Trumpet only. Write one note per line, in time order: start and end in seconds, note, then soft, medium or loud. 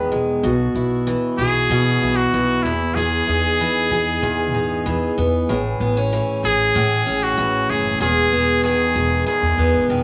0.00 0.12 B4 loud
1.39 2.17 G#4 loud
2.16 2.64 F#4 loud
2.63 2.97 E4 medium
2.95 5.16 G#4 loud
6.45 7.25 G#4 loud
7.23 7.72 F#4 loud
7.70 8.01 G#4 loud
8.01 8.60 G#4 loud
8.64 9.23 G#4 loud
9.27 9.86 G#4 medium